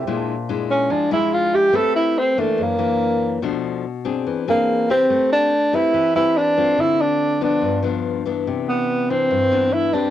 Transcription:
<<
  \new Staff \with { instrumentName = "Grand piano" } { \time 4/4 \key a \minor \tempo 4 = 143 <b' c'' e'' g'' a''>4 r4 aes''4. e''16 g''16~ | g''8. r2. r16 | r1 | r1 |
r1 | r1 | }
  \new Staff \with { instrumentName = "Tenor saxophone" } { \time 4/4 \key a \minor r4. cis'8 d'8 e'8 f'8 g'8 | a'8 e'8 c'8 a8 ais2 | r2 r8 bes4 bis8~ | bis8 d'4 e'4 e'8 d'4 |
e'8 d'4 d'4 r4. | r8 b4 c'4. e'8 d'8 | }
  \new Staff \with { instrumentName = "Nylon-string guitar" } { \time 4/4 \key a \minor << { <aes d' e'>8 r8 <aes d' e'>4. <aes d' e'>4. | <c' g' b'>4. <e bes d'>4 <e ais d'>4. | <f a d'>4 r8 <c' d' gis'>4 <bis d' gis'>4 <bis g' b'>8~ | <bis g' b'>4 r8 <c' g' b'>4 <c' g' b'>4 <a c' f'>8~ |
<a c' f'>4. <f b d'>4 <f b d'>4 <e b d'>8~ | <e b d'>4. <e d'>4 <e b d'>4 <c' g' b'>8 | } \\ { bes,2 f2 | a2 fis,2 | b,2 e2 | a2 e2 |
d2 g,2 | c2 g,2 | } >> }
>>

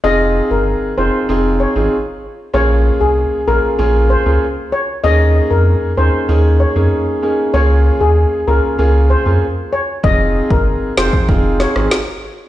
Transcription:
<<
  \new Staff \with { instrumentName = "Steel pan" } { \time 4/4 \key f \minor \tempo 4 = 96 ees''16 r8 bes'16 r8 c''16 r8. des''16 r4 r16 | des''16 r8 aes'16 r8 bes'16 r8. c''16 r8. des''16 r16 | ees''16 r8 bes'16 r8 c''16 r8. des''16 r4 r16 | des''16 r8 aes'16 r8 bes'16 r8. c''16 r8. des''16 r16 |
ees''16 r8 bes'16 r8 c''16 r8. des''16 r4 r16 | }
  \new Staff \with { instrumentName = "Grand piano" } { \time 4/4 \key f \minor <c' ees' f' aes'>4. <c' ees' f' aes'>8 <c' ees' f' aes'>8. <c' ees' f' aes'>16 r4 | <bes des' f' aes'>4. <bes des' f' aes'>8 <bes des' f' aes'>8. <bes des' f' aes'>16 r4 | <bes des' ees' aes'>4. <bes des' ees' aes'>8 <bes des' ees' aes'>8. <bes des' ees' aes'>8. <bes des' ees' aes'>8 | <bes des' f' aes'>4. <bes des' f' aes'>8 <bes des' f' aes'>8. <bes des' f' aes'>16 r4 |
<c' ees' f' aes'>4. <c' ees' f' aes'>8 <c' ees' f' aes'>8. <c' ees' f' aes'>16 r4 | }
  \new Staff \with { instrumentName = "Sub bass" } { \clef bass \time 4/4 \key f \minor f,,8. g,,8 r16 f,,16 r16 f,,8. aes,,16 r4 | bes,,8. c,8 r16 bes,,16 r16 bes,,8. des,16 r4 | ees,8. f,8 r16 ees,16 r16 ees,8. f,16 r4 | des,8. ees,8 r16 des,16 r16 des,8. f,16 r4 |
f,,8. g,,8 r16 f,,16 r16 f,,8. aes,,16 r4 | }
  \new DrumStaff \with { instrumentName = "Drums" } \drummode { \time 4/4 r4 r4 r4 r4 | r4 r4 r4 r4 | r4 r4 r4 r4 | r4 r4 r4 r4 |
bd8. bd16 r8 sn16 bd16 bd8 sn16 ss16 sn4 | }
>>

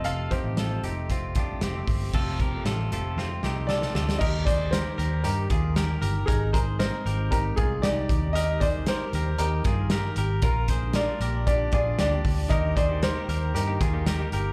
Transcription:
<<
  \new Staff \with { instrumentName = "Upright piano" } { \time 4/4 \key f \mixolydian \tempo 4 = 116 f''8 c''4. r2 | r2. d''4 | ees''8 d''8 c''4 bes'4. r8 | aes'8 bes'8 c''4 bes'8 aes'8 d''4 |
ees''8 d''8 c''4 bes'4. r8 | bes'4 d''4 d''8 d''8 d''4 | ees''8 d''8 c''4 bes'4. r8 | }
  \new Staff \with { instrumentName = "Clean electric guitar" } { \time 4/4 \key f \mixolydian <f' a'>8 <ees' g'>8 <f' a'>8 <ees' g'>8 <c' f'>8 <d' f'>8 <c' g'>4 | <f' a'>8 <g' bes'>8 <f' a'>8 <f' a'>8 <c' f'>8 <ees' g'>8 <f' a'>8 <f' a'>8 | <g' bes'>8 <aes' c''>8 <g' bes'>8 <g' bes'>8 <ees' g'>8 <f' aes'>8 <g' bes'>8 <g' bes'>8 | <ees' bes'>8 <aes' c''>8 <ees' bes'>8 <g' bes'>8 <ees' g'>8 <f' aes'>8 <ees' g'>4 |
<g' bes'>8 <aes' c''>8 <g' bes'>8 <g' bes'>8 <ees' g'>8 <f' aes'>8 <g' bes'>8 <g' bes'>8 | <f' bes'>8 <aes' c''>8 <f' bes'>8 <g' bes'>8 <d' g'>8 <f' aes'>8 <d' g'>4 | <g' bes'>8 <aes' c''>8 <g' bes'>8 <g' bes'>8 <ees' g'>8 <f' aes'>8 <g' bes'>8 <g' bes'>8 | }
  \new Staff \with { instrumentName = "Analog synth pad" } { \time 4/4 \key f \mixolydian r1 | r1 | <ees ees' g' bes'>1 | <aes c'>2.~ <aes c'>8 <ees g' bes'>8~ |
<ees g' bes'>1 | <bes d' f'>1 | <ees ees' g' bes'>1 | }
  \new Staff \with { instrumentName = "Clean electric guitar" } { \time 4/4 \key f \mixolydian <f, c f a c' g'>8 <f, c f a c' g'>4 <f a c' g'>4 <f a c' g'>8. <f a c' g'>8. | <f, c f a c' g'>8. <f a c' g'>8. <f a c' g'>4 <f a c' g'>4 <f a c' g'>8 | r1 | r1 |
r1 | r1 | <ees bes ees' g'>8. <bes ees' g'>8 <bes ees' g'>4 <ees bes ees' g'>8 <ees bes ees' g'>8 <bes ees' g'>8. | }
  \new Staff \with { instrumentName = "Fingered electric bass" } { \clef bass \time 4/4 \key f \mixolydian f,,8. a,,8. f,,4. f,,8 g,,8 | f,,4 a,,8 f,,8 f,8 c,4 d,8 | ees,4~ ees,16 r16 ees,8 g,8 ees,4 g,,8 | aes,,4~ aes,,16 r16 aes,,4 c,8 c,8 ees,8~ |
ees,4~ ees,16 r16 ees,8 ees,8 g,4 aes,,8 | bes,,4~ bes,,16 r16 bes,,4 bes,,8 d,8 d,8 | ees,4~ ees,16 r16 ees,8 g,8 ees,4 g,,8 | }
  \new DrumStaff \with { instrumentName = "Drums" } \drummode { \time 4/4 hh8 <hh bd>8 <hh sn>8 hh8 <hh bd>8 <hh bd>8 <hh sn>8 <hho bd>8 | <cymc bd>8 <hh bd>8 <hh sn>8 hh8 sn8 sn8 sn16 sn16 sn16 sn16 | <cymc bd>8 <hh bd>8 <hh sn>8 hh8 hh8 <hh bd>8 <hh sn>8 hh8 | <hh bd>8 <hh bd>8 <hh sn>8 hh8 <hh bd>8 <hh bd>8 <hh sn>8 <hh bd>8 |
hh8 <hh bd>8 <hh sn>8 hh8 hh8 <hh bd>8 <hh sn>8 hh8 | <hh bd>8 <hh bd>8 <hh sn>8 hh8 <hh bd>8 <hh bd>8 <hh sn>8 <hho bd>8 | <hh bd>8 <hh bd>8 <hh sn>8 hh8 hh8 <hh bd>8 <hh sn>8 hh8 | }
>>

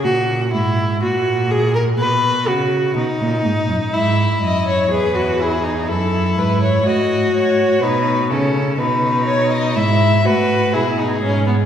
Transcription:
<<
  \new Staff \with { instrumentName = "Violin" } { \time 4/4 \key e \major \tempo 4 = 62 r1 | e''8 dis''16 cis''16 b'8 gis'8 a'8 b'16 cis''16 dis''8 cis''8 | b'8 a'8 b'8 cis''16 dis''16 e''8 b'8 gis'4 | }
  \new Staff \with { instrumentName = "Viola" } { \time 4/4 \key e \major fis'8 e'8 fis'8 gis'16 ais'16 b'8 fis'8 dis'4 | e'4 gis'16 fis'16 e'16 dis'16 e'4 fis'4 | dis'8 cis'8 dis'4 e'8 fis'8 e'16 dis'16 cis'16 b16 | }
  \new Staff \with { instrumentName = "Cello" } { \clef bass \time 4/4 \key e \major ais,8 gis,8 ais,4 b,8 cis8 b,16 ais,16 gis,16 fis,16 | gis,8 fis,8 e,4 fis,8 gis,8 a,4 | b,8 cis8 b,4 gis,8 a,8 b,8 gis,8 | }
>>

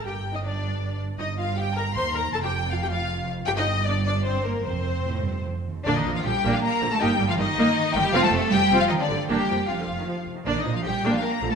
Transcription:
<<
  \new Staff \with { instrumentName = "Violin section" } { \time 3/4 \key c \dorian \tempo 4 = 157 g''8. ees''16 d''4. r8 | \key bes \major ees''8 f''8 g''8 bes''8 c'''8 bes''8 | a''16 g''8. f''16 g''16 f''4 r8 | g''16 ees''8. d''8 d''8 c''8 bes'8 |
c''2 r4 | d''16 ees''8 f''16 g''8. f''16 bes''8. a''16 | g''8. f''16 ees''4. g''8 | f''16 a''8. g''8. f''16 ees''16 d''8. |
g''4 f''4. r8 | d''16 ees''8 f''16 g''8. f''16 bes''8. a''16 | }
  \new Staff \with { instrumentName = "Violin section" } { \time 3/4 \key c \dorian g''8. ees''16 d''4. r8 | \key bes \major ees''8 f''8 g''8 bes''8 c'''8 bes''8 | a''16 g''8. f''16 g''16 f''4 r8 | g''16 ees''8. d''8 d''8 c''8 bes'8 |
c''2 r4 | d'16 ees'8 f'16 g'8. f'16 bes'8. a'16 | g'8. f'16 ees'4. g'8 | f'16 a'8. g'8. f'16 ees'16 d'8. |
g'4 f'4. r8 | d'16 ees'8 f'16 g'8. f'16 bes'8. a'16 | }
  \new Staff \with { instrumentName = "Viola section" } { \time 3/4 \key c \dorian g'8. ees'16 d'4. r8 | \key bes \major ees'8 f'8 g'8 bes'8 c''8 bes'8 | a'16 g'8. f'16 g'16 f'4 r8 | g'16 ees'8. d'8 d'8 c'8 bes8 |
c'2 r4 | <bes d'>8 <f bes>8 <d f>8 <bes d'>8 r8 <d f>8 | <bes ees'>8 <g bes>8 <ees g>8 <bes ees'>8 r8 <ees g>8 | <c' f'>8 <a c'>8 <f a>8 <c' f'>8 r8 <d g>8 |
<bes d'>8 <f bes>8 c16 d8 ees16 f8. ees16 | <bes d'>8 <f bes>8 <d f>8 <bes d'>8 r8 <d f>8 | }
  \new Staff \with { instrumentName = "Cello section" } { \clef bass \time 3/4 \key c \dorian g,2. | \key bes \major g,2 ees,4 | f,2. | g,2. |
f,4 a,8 g,8 f,8 ees,8 | d16 ees8 f16 g8. f16 bes8. a16 | g8. f16 ees4. g8 | f16 a8. g8. f16 ees16 d8. |
g4 f4. r8 | d16 ees8 f16 g8. f16 bes8. a16 | }
  \new Staff \with { instrumentName = "Double bass section" } { \clef bass \time 3/4 \key c \dorian g,,2. | \key bes \major g,,2 ees,4 | f,,2. | g,,2. |
f,,2~ f,,8 r8 | bes,,8 bes,,8 bes,,8 bes,,8 r8 bes,,8 | g,,8 g,,8 g,,8 g,,8 r8 g,,8 | f,,8 f,,8 f,,8 f,,8 r8 g,,8 |
f,,8 f,,8 f,,8 f,,8 r8 f,,8 | bes,,8 bes,,8 bes,,8 bes,,8 r8 bes,,8 | }
>>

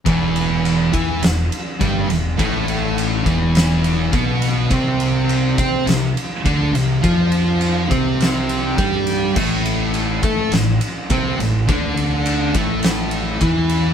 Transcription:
<<
  \new Staff \with { instrumentName = "Distorted electric guitar" } { \clef bass \time 4/4 \key e \phrygian \tempo 4 = 103 <e, e>4. <e e'>8 e,8 r8 <g, g>8 e,8 | <a, a>4. <e, e>4. <b, b>4 | <c c'>4. <c' c''>8 c8 r8 <d d'>8 c8 | <f f'>4. <c c'>4. <g g'>4 |
<a, a>4. <a a'>8 a,8 r8 <c c'>8 a,8 | <d d'>4. <a, a>4. <e e'>4 | }
  \new Staff \with { instrumentName = "Distorted electric guitar" } { \clef bass \time 4/4 \key e \phrygian <e, e>4. <e e'>8 e,8 r8 <g, g>8 e,8 | <a, a>4. <e, e>4. <b, b>4 | <c c'>4. <c' c''>8 c8 r8 <d d'>8 c8 | <f f'>4. <c c'>4. <g g'>4 |
<a, a>4. <a a'>8 a,8 r8 <c c'>8 a,8 | <d d'>4. <a, a>4. <e e'>4 | }
  \new Staff \with { instrumentName = "Distorted electric guitar" } { \clef bass \time 4/4 \key e \phrygian <e, e>4. <e e'>8 e,8 r8 <g, g>8 e,8 | <a, a>4. <e, e>4. <b, b>4 | <c c'>4. <c' c''>8 c8 r8 <d d'>8 c8 | <f f'>4. <c c'>4. <g g'>4 |
<a, a>4. <a a'>8 a,8 r8 <c c'>8 a,8 | <d d'>4. <a, a>4. <e e'>4 | }
  \new Staff \with { instrumentName = "Fingered electric bass" } { \clef bass \time 4/4 \key e \phrygian e,,4. e,8 e,,8 r8 g,,8 e,,8 | a,,4. e,,4. b,,4 | c,4. c8 c,8 r8 d,8 c,8 | f,4. c,4. g,4 |
a,,4. a,8 a,,8 r8 c,8 a,,8 | d,4. a,,4. e,4 | }
  \new DrumStaff \with { instrumentName = "Drums" } \drummode { \time 4/4 <bd cymr>8 cymr8 cymr8 <bd cymr>8 <cymr sn>8 cymr8 <bd cymr>8 <cymr sn>8 | <bd cymr>8 cymr8 cymr8 <bd cymr>8 <cymr sn>8 cymr8 <bd cymr>8 <cymr sn>8 | <bd cymr>8 cymr8 cymr8 <bd cymr>8 <cymr sn>8 cymr8 <bd cymr>8 <cymr sn>8 | <bd cymr>8 cymr8 cymr8 <bd cymr>8 <cymr sn>8 cymr8 <bd cymr>8 <cymr sn>8 |
<cymc bd>8 cymr8 cymr8 <bd cymr>8 <cymr sn>8 cymr8 <bd cymr>8 <cymr sn>8 | <bd cymr>8 cymr8 cymr8 <bd cymr>8 <cymr sn>8 cymr8 <bd cymr>8 cymr8 | }
>>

